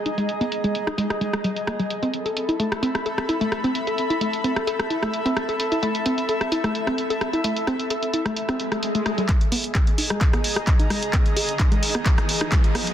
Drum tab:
HH |xxxxxxxxxxxxxxxx|xxxxxxxxxxxxxxxx|xxxxxxxxxxxxxxxx|xxxxxxxxxxxxxxxx|
CP |----------------|----------------|----------------|----------------|
SD |-------r-r-r--r-|-------r-r-r--r-|-------r-r-r--r-|-------r-r-r--r-|
BD |----------------|----------------|----------------|----------------|

HH |xxxxxxxxxxxxxxxx|xxoxxxoxxxoxxxox|xxoxxxo-xxo-xxox|
CP |----------------|x---x---x---x---|x---x---x---x---|
SD |--r----r-r-r--r-|-------r-r-r--r-|-------r-r-r--r-|
BD |----------------|o---o---o---o---|o---o---o---o---|